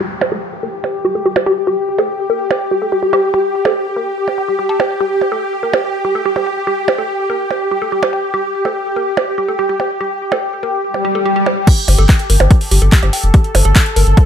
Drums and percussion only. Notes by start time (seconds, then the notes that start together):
0.21 percussion blips
0.84 percussion blips
1.36 percussion blips
1.98 percussion blips
2.51 percussion blips
3.13 percussion blips
3.65 percussion blips
4.28 percussion blips
4.80 percussion blips
5.21 percussion blips
5.73 percussion blips
6.36 percussion blips
6.88 percussion blips
7.51 percussion blips
8.03 percussion blips
8.65 percussion blips
9.17 percussion blips
9.80 percussion blips
10.32 percussion blips
10.94 percussion blips
11.46 percussion blips
11.67 kick, closed hi-hat, crash
11.78 closed hi-hat
11.88 open hi-hat, percussion blips
12.09 kick, clap, closed hi-hat
12.19 closed hi-hat
12.30 open hi-hat
12.40 percussion blips
12.51 kick, closed hi-hat
12.61 open hi-hat
12.71 open hi-hat
12.82 closed hi-hat
12.92 kick, clap, closed hi-hat
13.03 closed hi-hat, percussion blips
13.13 open hi-hat
13.24 closed hi-hat
13.34 kick, closed hi-hat
13.44 closed hi-hat
13.55 open hi-hat, percussion blips
13.65 closed hi-hat
13.76 kick, clap, closed hi-hat
13.86 closed hi-hat
13.96 open hi-hat
14.07 closed hi-hat
14.17 kick, closed hi-hat, percussion blips